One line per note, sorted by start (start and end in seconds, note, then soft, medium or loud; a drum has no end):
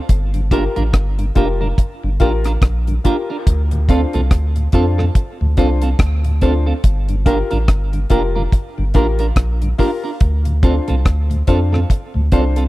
0.09 0.68 G1 loud
0.09 kick loud
0.09 closed hi-hat loud
0.34 0.41 G2 medium
0.34 0.41 D3 medium
0.34 closed hi-hat medium
0.51 0.61 A#3 medium
0.51 0.63 D4 medium
0.51 0.75 F4 medium
0.51 0.61 F4 medium
0.51 0.63 F4 medium
0.51 0.61 G4 medium
0.51 0.75 G4 medium
0.51 0.75 A#4 loud
0.51 0.63 A#4 loud
0.51 kick loud
0.51 closed hi-hat medium
0.76 0.92 A1 medium
0.76 0.83 G2 medium
0.76 0.83 D3 medium
0.76 0.83 D4 medium
0.76 0.82 F4 medium
0.76 0.82 A#4 medium
0.76 closed hi-hat soft
0.93 1.31 G1 medium
0.93 kick loud
0.93 cross-stick loud
0.93 closed hi-hat loud
1.19 1.25 G2 medium
1.19 1.26 D3 medium
1.19 closed hi-hat medium
1.35 1.73 F1 loud
1.35 1.45 A#3 medium
1.35 1.47 D4 medium
1.35 1.59 F4 medium
1.35 1.46 F4 medium
1.35 1.47 F4 medium
1.35 1.59 G4 medium
1.35 1.46 G4 medium
1.35 1.60 A#4 medium
1.35 1.47 A#4 medium
1.35 kick medium
1.35 closed hi-hat medium
1.61 1.68 G2 medium
1.61 1.68 D3 medium
1.61 1.67 D4 soft
1.61 1.67 F4 medium
1.61 1.67 A#4 medium
1.78 kick loud
1.78 closed hi-hat medium
2.04 2.19 G1 medium
2.04 2.10 G2 medium
2.04 2.10 D3 medium
2.20 2.57 A1 loud
2.20 2.30 A#3 medium
2.20 2.31 D4 medium
2.20 2.44 F4 medium
2.20 2.30 F4 medium
2.20 2.32 F4 medium
2.20 2.44 G4 medium
2.20 2.30 G4 medium
2.20 2.44 A#4 loud
2.20 2.32 A#4 medium
2.20 kick medium
2.20 closed hi-hat medium
2.44 2.52 D4 soft
2.44 2.52 F4 medium
2.44 2.51 A#4 medium
2.44 cross-stick medium
2.44 closed hi-hat medium
2.62 2.99 A#1 medium
2.62 kick loud
2.62 cross-stick loud
2.62 closed hi-hat medium
2.87 2.94 G2 medium
2.87 2.94 D3 medium
2.87 closed hi-hat medium
3.04 3.15 A#3 medium
3.04 3.16 D4 medium
3.04 3.28 F4 medium
3.04 3.15 F4 medium
3.04 3.16 F4 medium
3.04 3.28 G4 medium
3.04 3.15 G4 medium
3.04 3.29 A#4 medium
3.04 3.16 A#4 loud
3.04 kick medium
3.04 closed hi-hat medium
3.30 3.36 D4 medium
3.30 3.36 F4 medium
3.30 3.36 A#4 medium
3.47 4.05 D2 loud
3.47 kick loud
3.47 closed hi-hat loud
3.71 3.79 D2 medium
3.71 3.79 A2 medium
3.71 closed hi-hat medium
3.89 3.99 C4 medium
3.89 4.00 C4 medium
3.89 4.12 D4 medium
3.89 3.99 D4 medium
3.89 4.13 F4 medium
3.89 4.00 F4 medium
3.89 3.99 F4 medium
3.89 4.01 A4 loud
3.89 4.13 C5 loud
3.89 kick loud
3.89 closed hi-hat medium
4.13 4.30 C2 medium
4.13 4.21 D2 medium
4.13 4.21 A2 medium
4.13 4.20 C4 medium
4.13 4.20 F4 medium
4.13 4.20 A4 medium
4.13 closed hi-hat soft
4.31 4.68 D2 medium
4.31 kick loud
4.31 cross-stick medium
4.31 closed hi-hat medium
4.56 4.63 D2 medium
4.56 4.63 A2 medium
4.56 closed hi-hat medium
4.72 5.10 F2 medium
4.72 4.84 C4 medium
4.72 4.83 C4 medium
4.72 4.97 D4 medium
4.72 4.83 D4 medium
4.72 4.97 F4 medium
4.72 4.85 F4 medium
4.72 4.84 F4 medium
4.72 4.85 A4 loud
4.72 4.97 C5 medium
4.72 kick medium
4.72 closed hi-hat medium
4.98 5.05 D2 medium
4.98 5.05 A2 medium
4.98 5.05 C4 soft
4.98 5.04 F4 medium
4.98 5.04 A4 medium
4.98 cross-stick medium
5.15 kick loud
5.15 closed hi-hat medium
5.41 5.47 D2 medium
5.41 5.56 D2 medium
5.41 5.47 A2 medium
5.57 5.95 C2 medium
5.57 5.69 C4 medium
5.57 5.67 C4 medium
5.57 5.81 D4 medium
5.57 5.67 D4 medium
5.57 5.81 F4 medium
5.57 5.69 F4 medium
5.57 5.68 F4 medium
5.57 5.69 A4 medium
5.57 5.81 C5 loud
5.57 kick medium
5.57 closed hi-hat medium
5.82 5.89 C4 medium
5.82 5.89 F4 medium
5.82 5.88 A4 medium
5.82 closed hi-hat medium
5.99 6.73 D2 medium
5.99 kick loud
5.99 cross-stick loud
5.99 closed hi-hat medium
6.25 6.31 D2 medium
6.25 6.31 A2 medium
6.25 closed hi-hat medium
6.41 6.53 C4 medium
6.41 6.52 C4 medium
6.41 6.65 D4 medium
6.41 6.52 D4 medium
6.41 6.53 F4 medium
6.41 6.66 F4 medium
6.41 6.52 F4 medium
6.41 6.53 A4 medium
6.41 6.66 C5 loud
6.41 kick medium
6.41 closed hi-hat medium
6.66 6.73 C4 medium
6.66 6.73 F4 medium
6.66 6.73 A4 medium
6.84 7.43 G1 loud
6.84 kick loud
6.84 closed hi-hat loud
7.09 7.16 G2 medium
7.09 7.16 D3 medium
7.09 closed hi-hat medium
7.26 7.36 A#3 medium
7.26 7.37 D4 medium
7.26 7.49 F4 medium
7.26 7.36 F4 medium
7.26 7.37 F4 medium
7.26 7.50 G4 medium
7.26 7.36 G4 medium
7.26 7.50 A#4 loud
7.26 7.38 A#4 medium
7.26 kick loud
7.26 closed hi-hat medium
7.51 7.67 A1 medium
7.51 7.58 G2 medium
7.51 7.58 D3 medium
7.51 7.57 D4 soft
7.51 7.57 F4 medium
7.51 7.57 A#4 medium
7.51 closed hi-hat medium
7.68 8.05 G1 medium
7.68 kick loud
7.68 cross-stick loud
7.68 closed hi-hat loud
7.93 8.00 G2 soft
7.93 8.00 D3 soft
7.93 closed hi-hat soft
8.10 8.48 F1 medium
8.10 8.20 A#3 medium
8.10 8.21 D4 medium
8.10 8.34 F4 medium
8.10 8.22 F4 medium
8.10 8.20 F4 medium
8.10 8.34 G4 medium
8.10 8.21 G4 medium
8.10 8.34 A#4 medium
8.10 8.22 A#4 medium
8.10 kick medium
8.10 closed hi-hat medium
8.36 8.42 G2 medium
8.36 8.42 D3 medium
8.36 8.42 D4 soft
8.36 8.42 F4 medium
8.36 8.41 A#4 medium
8.52 kick loud
8.52 closed hi-hat medium
8.78 8.93 G1 medium
8.78 8.85 G2 medium
8.78 8.84 D3 medium
8.94 9.32 A1 loud
8.94 9.05 A#3 medium
8.94 9.06 D4 medium
8.94 9.18 F4 medium
8.94 9.06 F4 medium
8.94 9.05 F4 medium
8.94 9.18 G4 medium
8.94 9.05 G4 medium
8.94 9.19 A#4 loud
8.94 9.06 A#4 loud
8.94 kick medium
8.94 closed hi-hat medium
9.19 9.26 D4 soft
9.19 9.26 F4 medium
9.19 9.26 A#4 medium
9.19 closed hi-hat medium
9.36 9.74 A#1 medium
9.36 kick loud
9.36 cross-stick loud
9.36 closed hi-hat medium
9.62 9.69 G2 medium
9.62 9.69 D3 medium
9.62 closed hi-hat medium
9.78 9.89 A#3 medium
9.78 9.90 D4 medium
9.78 10.02 F4 medium
9.78 9.90 F4 medium
9.78 9.89 F4 medium
9.78 10.03 G4 medium
9.78 9.89 G4 medium
9.78 10.03 A#4 loud
9.78 9.91 A#4 medium
9.78 kick medium
9.78 open hi-hat medium
10.04 10.10 D4 soft
10.04 10.10 F4 medium
10.04 10.10 A#4 medium
10.20 10.80 D2 loud
10.20 kick loud
10.20 closed hi-hat loud
10.45 10.53 D2 medium
10.45 10.53 A2 medium
10.45 closed hi-hat medium
10.63 10.74 C4 medium
10.63 10.73 C4 medium
10.63 10.87 D4 medium
10.63 10.73 D4 medium
10.63 10.87 F4 medium
10.63 10.75 F4 medium
10.63 10.73 F4 medium
10.63 10.75 A4 medium
10.63 10.87 C5 medium
10.63 kick loud
10.63 closed hi-hat medium
10.88 11.04 C2 medium
10.88 10.95 D2 medium
10.88 10.95 A2 medium
10.88 10.95 C4 medium
10.88 10.94 F4 medium
10.88 10.94 A4 medium
10.88 closed hi-hat soft
11.05 11.43 D2 medium
11.05 kick loud
11.05 cross-stick loud
11.05 closed hi-hat medium
11.30 11.37 D2 medium
11.30 11.37 A2 medium
11.30 closed hi-hat medium
11.47 11.85 F2 loud
11.47 11.57 C4 medium
11.47 11.59 C4 medium
11.47 11.71 D4 medium
11.47 11.57 D4 medium
11.47 11.71 F4 medium
11.47 11.58 F4 medium
11.47 11.59 F4 medium
11.47 11.59 A4 medium
11.47 11.72 C5 medium
11.47 kick medium
11.47 closed hi-hat medium
11.72 11.79 D2 medium
11.72 11.79 A2 medium
11.72 11.79 C4 medium
11.72 11.79 F4 medium
11.72 11.79 A4 medium
11.72 cross-stick medium
11.90 kick loud
11.90 closed hi-hat medium
12.14 12.21 D2 medium
12.14 12.31 D2 medium
12.14 12.21 A2 medium
12.32 12.68 C2 medium
12.32 12.43 C4 medium
12.32 12.42 C4 medium
12.32 12.56 D4 medium
12.32 12.42 D4 medium
12.32 12.56 F4 medium
12.32 12.42 F4 medium
12.32 12.43 F4 medium
12.32 12.44 A4 medium
12.32 12.56 C5 loud
12.32 kick medium
12.32 closed hi-hat medium
12.56 12.63 C4 medium
12.56 12.63 F4 medium
12.56 12.63 A4 medium
12.56 closed hi-hat medium